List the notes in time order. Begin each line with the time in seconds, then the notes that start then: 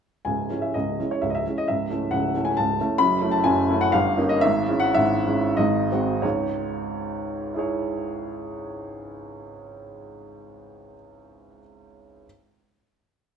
0.25 C#1 C#2 G#5
0.50 G#3 C#4 E4
0.62 E5
0.74 C#1 C#2 D#5
0.98 G#3 C#4 E4
1.11 C#5
1.22 C#1 C#2 E5
1.30 D#5
1.35 E5
1.46 G#3 C#4 E4
1.58 D#5
1.68 C#1 C#2 E5
1.90 A3 C#4 E4
2.11 C#1 C#2 F#5
2.36 A3 C#4 E4
2.45 G#5
2.57 C#1 C#2 A5
2.80 A3 C#4 E4
2.98 F#1 F#2 B5
3.21 A3 C#4 E4
3.32 A5
3.44 F#1 F#2 G#5
3.69 A3 C#4 E4
3.81 F#5
3.92 G1 G2 F5
4.17 A#3 C#4 D#4
4.29 D#5
4.41 G#1 G#2 E5
4.68 G#3 C#4 E4
4.80 F#5
4.94 G#1 G#2 E5
5.27 G#3 C#4 E4
5.57 G#1 G#2 D#5
5.92 G#3 C4 F#4
6.22 C#2 G#2 C#5
7.54 E4 G#4
7.59 C#5